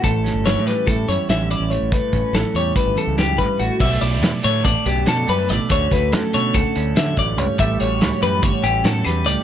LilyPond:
<<
  \new Staff \with { instrumentName = "Clean electric guitar" } { \time 9/8 \key b \minor \tempo 4. = 95 a'4 cis''8 b'8 a'8 cis''8 e''8 d''8 cis''8 | b'4 a'8 cis''8 b'8 a'8 g'8 b'8 fis'8 | e''8 d''4 cis''8 d''8 g'8 a'8 b'8 d''8 | cis''8 b'8 a'8 cis''8 a'4 e''8 d''8 cis''8 |
e''8 cis''4 b'8 cis''8 g'8 a'8 b'8 d''8 | }
  \new Staff \with { instrumentName = "Clean electric guitar" } { \clef bass \time 9/8 \key b \minor << { r8 cis'4 g8 e'4 cis'8 e'4 | r8 cis'4 g8 e'2~ e'8 | g16 a16 e'8 b8 a8 d'8 b8 d'8 g16 a16 a8 | <d a cis' fis'>8 fis'8 cis'8 a8 fis'8 cis'2 |
g8 fis'8 cis'8 g8 fis'8 cis'8 fis'8 g8 g8 | } \\ { a,4 e4. e,4. a,8 | a,4 e4. e,8 fis,8 g,8 a,8 | b,4. d4 fis,4. b,8 | d,4. d4 a,8 e,8 fis,8 g,8 |
a,4. e4 e,4. a,8 | } >> }
  \new Staff \with { instrumentName = "Fingered electric bass" } { \clef bass \time 9/8 \key b \minor a,,8. g,,8 a,8 r16 a,8 fis,16 r16 a,,8. a,,8 a,,16~ | a,,16 r16 a,,16 r16 a,,16 r16 e,8 r16 g,,16 r16 cis,8. a,16 r16 a,,16 r16 | b,,8 b,,8 e,16 r16 a,8 a,,16 r16 b,,8 b,8 fis,8 a,,16 r16 | d,8 d,8 fis,16 r16 b,8 cis,16 r16 d,8 d8 a,,8 cis,16 r16 |
a,,8 a,,8 cis,16 r16 fis,8 g,,16 r16 a,,8 a,8 e,8 cis,16 r16 | }
  \new DrumStaff \with { instrumentName = "Drums" } \drummode { \time 9/8 <hh bd>8 <hh sn>8 <hh sn>8 <hh sn>8 <hh bd>8 hh8 <hh sn>8 hh8 hh8 | <hh bd>8 <hh bd>8 <hh sn>8 hh8 <hh bd>8 hh8 <hh sn>8 <hh bd>8 hh8 | <cymc bd>8 hh8 <hh sn>8 hh8 <hh bd>8 hh8 <hh sn>8 hh8 <hh sn>8 | <hh bd>8 <hh bd sn>8 <hh sn>8 hh8 <hh bd>8 hh8 <hh sn>8 <hh bd>8 hh8 |
<hh bd>8 hh8 <hh sn>8 hh8 <hh bd>8 hh8 <hh sn>8 <hh sn>8 hh8 | }
>>